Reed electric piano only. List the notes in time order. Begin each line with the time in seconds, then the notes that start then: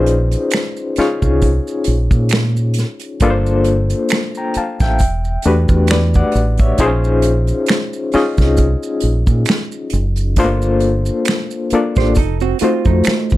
Already playing: C#4 D#4 F4 G#4 B4 C5 D5
0.98 C#4 D#4 F4 G#4 C#5
3.22 A#3 D4 F4 A4 B4
3.30 C5
4.37 G5 A#5
4.57 F5 A5
4.82 E5 G5
5.46 A3 D4 F#4 G4 B4
5.91 B4 D5
6.16 D5 F#5
6.60 C#5 E5
6.79 C4 D#4 F4 G#4 C5
6.86 C#4
8.14 C#4 D#4 F4 G#4 D#5
10.38 A3 D4 F4 A4 C5
10.44 A#3
11.73 A#3 D4 F4 A4 D5
12.62 A3 D#4 F4 F#4 C5